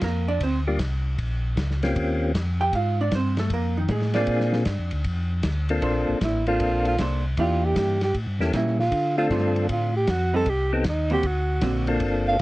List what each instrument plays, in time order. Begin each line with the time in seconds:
0.01 tonewheel organ F2, hollow-body jazz guitar A#3 A#4, kick, snare, hi-hat pedal, ride
0.28 hollow-body jazz guitar D4 D5
0.40 tonewheel organ D2, hollow-body jazz guitar C4 C5, kick, ride
0.67 tonewheel organ G3 A#3 D4 F4 G4
0.79 tonewheel organ C2, kick, snare, hi-hat pedal, ride
1.18 tonewheel organ A#1, kick, ride
1.57 tonewheel organ C#2, kick, snare, hi-hat pedal, ride
1.71 snare
1.83 tonewheel organ A#3 C4 C#4 F4 G4, snare, ride
1.96 tonewheel organ D#2, kick, ride
2.34 tonewheel organ F2, kick, snare, hi-hat pedal, ride
2.61 hollow-body jazz guitar G4 G5
2.73 tonewheel organ G#2, hollow-body jazz guitar F4 F5, kick, ride
3.01 hollow-body jazz guitar D4 D5
3.12 tonewheel organ G2, hollow-body jazz guitar C5, kick, snare, hi-hat pedal, ride
3.16 hollow-body jazz guitar C4
3.37 hollow-body jazz guitar A3 A4, snare, ride
3.50 tonewheel organ F2, hollow-body jazz guitar A#3 A#4, kick, ride
3.77 hollow-body jazz guitar D#3 D#4
3.89 tonewheel organ A2, hollow-body jazz guitar G#3 G#4, kick, snare, hi-hat pedal, ride
4.02 snare
4.14 tonewheel organ A#3 C4 D4 F4 G#4, hollow-body jazz guitar D4 D5, snare, ride
4.27 tonewheel organ A#2, kick, ride
4.40 snare
4.53 snare
4.65 tonewheel organ G2, kick, snare, hi-hat pedal, ride
4.79 tonewheel organ F2
4.91 tonewheel organ D2, ride
5.04 tonewheel organ F2, kick, ride
5.43 tonewheel organ D2, kick, snare, hi-hat pedal, ride
5.69 tonewheel organ A#3 C4 D4 F4 A4, ride
5.82 tonewheel organ A#1, hollow-body jazz guitar A#3 D4 A4 C5, kick, ride
6.08 tonewheel organ A#1
6.21 tonewheel organ A1, alto saxophone E4, kick, snare, hi-hat pedal, ride
6.46 tonewheel organ A#3 C4 D4 F4 A4, alto saxophone F4, ride
6.60 tonewheel organ A#1, kick, ride
6.85 alto saxophone F4, ride
6.98 tonewheel organ C2, hollow-body jazz guitar A#3 D4 A4 C5, kick, snare, hi-hat pedal, ride
7.37 tonewheel organ E2, hollow-body jazz guitar E3 A#3 D4 G4, alto saxophone F4, kick, ride
7.65 alto saxophone G4
7.76 tonewheel organ G2, kick, snare, hi-hat pedal, ride
8.01 alto saxophone G4, snare, ride
8.14 tonewheel organ A2, kick, ride
8.27 tonewheel organ G2
8.39 tonewheel organ E2 A#3 C#4 E4 G4 A4, snare
8.53 tonewheel organ A#2, hollow-body jazz guitar G3 A#3 C#4, alto saxophone E4, kick, snare, hi-hat pedal, ride
8.67 snare
8.79 alto saxophone F4, snare
8.91 tonewheel organ D3, kick, ride
9.18 tonewheel organ A3 C4 D4 F4 A4, alto saxophone F4
9.30 tonewheel organ G2, hollow-body jazz guitar D3 A3 C4 F4, kick, snare, hi-hat pedal, ride
9.56 ride
9.69 tonewheel organ A2, alto saxophone F4, kick, ride
9.96 alto saxophone G4
10.07 tonewheel organ F2, alto saxophone F#4, kick, snare, hi-hat pedal, ride
10.34 hollow-body jazz guitar G3 C4 D#4, alto saxophone A4
10.46 tonewheel organ C2, alto saxophone G4, kick, ride
10.73 tonewheel organ B3 C4 D#4 G4 A4, alto saxophone B3
10.84 tonewheel organ D#2, kick, snare, hi-hat pedal, ride
10.89 alto saxophone D#4
11.10 hollow-body jazz guitar D3 A#3 C4 F#4, alto saxophone G4, ride
11.23 tonewheel organ D2, alto saxophone F#4, kick, ride
11.61 tonewheel organ A#1, hollow-body jazz guitar D3 A#3 C4 F#4, kick, snare, hi-hat pedal, ride
11.87 tonewheel organ A#3 C4 D4 F4 A4, ride
12.00 tonewheel organ G1, kick, ride
12.28 alto saxophone F5